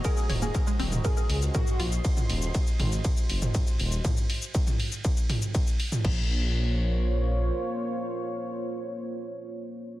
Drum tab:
CC |----------------|----------------|----------------|x---------------|
RD |x---x---x---x---|x---x---x---x---|x---x---x---x---|----------------|
HH |--o---o---o---o-|--o---o---o---o-|--o---o---o---o-|----------------|
SH |xx-xxx-xxx-xxx-x|xx-xxx-xxx-xxx-x|xx-xxx-xxx-xxx-x|----------------|
T2 |--o----o----o---|-o----o----o----|o----o----o----o|----------------|
BD |o---o---o---o---|o---o---o---o---|o---o---o---o---|o---------------|

CC |----------------|
RD |----------------|
HH |----------------|
SH |----------------|
T2 |----------------|
BD |----------------|